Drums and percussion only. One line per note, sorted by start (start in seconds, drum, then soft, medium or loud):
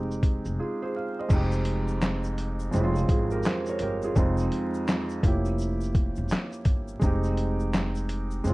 0.11 shaker soft
0.23 kick medium
0.23 closed hi-hat medium
0.23 shaker soft
0.45 shaker soft
1.30 kick loud
1.30 crash medium
1.30 shaker medium
1.51 shaker medium
1.51 shaker soft
1.65 closed hi-hat medium
1.65 shaker soft
1.88 shaker soft
2.01 snare loud
2.01 clap medium
2.01 shaker medium
2.24 shaker soft
2.38 closed hi-hat medium
2.38 shaker soft
2.60 shaker medium
2.73 shaker medium
2.75 shaker medium
2.95 shaker soft
2.97 shaker soft
3.09 kick medium
3.09 closed hi-hat medium
3.09 shaker soft
3.31 shaker soft
3.43 shaker medium
3.45 snare loud
3.45 clap medium
3.45 shaker medium
3.66 shaker soft
3.67 shaker soft
3.79 closed hi-hat medium
3.79 shaker soft
4.02 shaker medium
4.16 kick loud
4.16 shaker medium
4.37 shaker soft
4.39 shaker soft
4.52 closed hi-hat medium
4.52 shaker soft
4.74 shaker soft
4.88 snare loud
4.88 clap medium
4.88 shaker medium
5.09 shaker soft
5.23 kick loud
5.23 closed hi-hat medium
5.23 shaker soft
5.45 shaker medium
5.59 shaker medium
5.61 shaker medium
5.81 shaker medium
5.83 shaker soft
5.95 kick medium
5.95 closed hi-hat soft
5.95 shaker soft
6.16 shaker soft
6.29 shaker medium
6.30 snare loud
6.30 clap medium
6.30 shaker medium
6.52 shaker soft
6.65 kick medium
6.65 closed hi-hat medium
6.65 shaker soft
6.88 shaker medium
7.01 kick loud
7.01 shaker medium
7.23 shaker soft
7.37 closed hi-hat medium
7.37 shaker soft
7.60 shaker soft
7.73 snare loud
7.73 clap medium
7.73 shaker medium
7.95 shaker soft
8.09 closed hi-hat medium
8.09 shaker soft
8.31 shaker soft
8.45 shaker medium
8.46 shaker medium